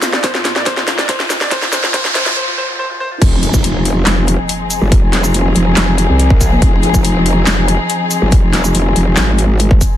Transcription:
Already playing: A#2 A#3 D#4 F4, riser
0.02 F4, snare, closed hi-hat, shaker
0.13 D5, snare
0.24 C5, kick, snare, closed hi-hat
0.34 F4, snare
0.45 F4, snare, closed hi-hat
0.56 D5, snare
0.66 C5, kick, snare, closed hi-hat
0.77 F4, snare
0.87 F4, snare, closed hi-hat
0.98 D5, snare
1.09 C5, kick, snare, closed hi-hat
1.20 F4, snare
1.30 F4, snare, closed hi-hat, shaker
1.41 D5, snare
1.51 C5, kick, snare, closed hi-hat, noise sweep
1.62 F4, snare
1.73 C5, snare, closed hi-hat, shaker
1.83 F4, snare
1.94 C5, kick, snare, closed hi-hat
2.05 F4, snare
2.15 C5, snare, closed hi-hat
2.26 F4, snare
2.36 C5
2.47 F4
2.58 C5
2.69 F4
2.79 C5
2.90 F4
3.00 C5
3.11 F4
3.22 F1 F3 C4 D#4 G#4, kick, closed hi-hat, crash, impact
3.43 closed hi-hat
3.54 kick, shaker
3.64 closed hi-hat
3.85 closed hi-hat
4.07 F1, snare, clap, closed hi-hat
4.28 closed hi-hat
4.49 closed hi-hat
4.71 closed hi-hat, shaker
4.81 G1
4.92 kick, closed hi-hat
5.03 F1
5.13 snare, closed hi-hat
5.24 shaker
5.34 F1, closed hi-hat
5.56 F1, closed hi-hat
5.77 F1, snare, clap, closed hi-hat
5.98 closed hi-hat
6.09 C2
6.19 closed hi-hat
6.30 kick
6.41 kick, closed hi-hat, shaker
6.45 B1
6.62 F1, kick, closed hi-hat
6.83 closed hi-hat
6.94 kick, shaker
7.05 closed hi-hat
7.26 closed hi-hat
7.47 F1, snare, clap, closed hi-hat
7.68 closed hi-hat
7.90 closed hi-hat
8.11 closed hi-hat, shaker
8.22 G1
8.32 kick, closed hi-hat
8.43 F1
8.53 snare, closed hi-hat
8.64 shaker
8.75 F1, closed hi-hat
8.96 F1, closed hi-hat
9.17 G#1, snare, clap, closed hi-hat
9.39 closed hi-hat
9.60 closed hi-hat
9.71 kick
9.81 kick, closed hi-hat, shaker

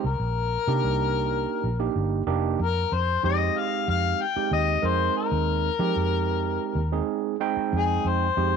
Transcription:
0.04 C2 A#4
0.19 A#1
0.67 C3 A#3 D4 D#4 G4
0.84 C2
1.64 A#1
1.80 A#3 D4 D#4 G4
1.96 G1
2.27 F1 A#3 D4 D#4 G4
2.59 F2 A#4
2.92 F2 C5
3.23 F2 G#3 C4 D#4 G4 D#5
3.58 F5
3.88 F2 F5
4.21 G5
4.36 G#3 C4 D#4 G4, muted fingered electric bass stroke
4.51 D#2 D#5
4.82 F2 G#3 C4 D#4 A#4
4.86 C5
5.17 A#4
5.32 D#2
5.79 F3 G#3 C4 D#4 G4
5.96 F2
6.75 D#2
6.92 G#3 C4 D#4 G#4
7.40 G#3 C4 D#4 G5
7.57 muted fingered electric bass stroke
7.73 F2 G#4
8.05 F2 C5
8.37 F2 G#3 C4 D#4 G4

